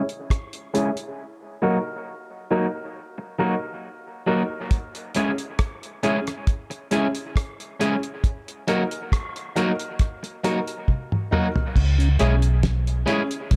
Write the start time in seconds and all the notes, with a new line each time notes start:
0.09 closed hi-hat
0.30 kick, cross-stick, closed hi-hat
0.53 closed hi-hat
0.74 G#3 C#4 E4 G#4 C#5, closed hi-hat
0.97 closed hi-hat
1.62 F#3 A#3 D#4 F#4 A#4
2.50 F#3 A#3 D#4 F#4 A#4
3.18 muted clean electric guitar stroke
3.38 F#3 A#3 D#4 F#4 A#4
4.26 F#3 A#3 D#4 F#4 A#4
4.71 kick, closed hi-hat
4.95 closed hi-hat
5.15 G#3 C#4 E4 G#4, closed hi-hat
5.38 closed hi-hat
5.59 kick, cross-stick, closed hi-hat
5.83 closed hi-hat
6.03 G#3 C#4 E4 G#4, closed hi-hat
6.27 cross-stick, closed hi-hat
6.47 kick, closed hi-hat
6.70 muted clean electric guitar stroke, closed hi-hat
6.91 G#3 C#4 E4 G#4, closed hi-hat
7.15 closed hi-hat
7.36 kick, cross-stick, closed hi-hat
7.60 closed hi-hat
7.79 G#3 C#4 E4 G#4, closed hi-hat
8.03 closed hi-hat
8.24 kick, closed hi-hat
8.48 closed hi-hat
8.67 F#3 A#3 D#4 F#4 A#4, closed hi-hat
8.91 closed hi-hat
9.12 kick, cross-stick, closed hi-hat
9.36 closed hi-hat
9.55 F#3 A#3 D#4 F#4 A#4, closed hi-hat
9.79 closed hi-hat
9.99 kick, cross-stick, closed hi-hat
10.23 muted clean electric guitar stroke, closed hi-hat
10.43 F#3 A#3 D#4 F#4 A#4, closed hi-hat
10.67 closed hi-hat
10.88 kick, high tom
11.12 mid tom
11.31 F#3 A#3 D#4 F#4 A#4, mid tom
11.56 floor tom
11.76 C#2, kick, crash
11.98 C#3, closed hi-hat
12.19 B1 G#3 C#4 E4 G#4, closed hi-hat
12.42 closed hi-hat
12.63 kick, snare, closed hi-hat
12.87 closed hi-hat
13.06 G#3 C#4 E4 G#4, closed hi-hat
13.31 closed hi-hat
13.51 C#2, kick, closed hi-hat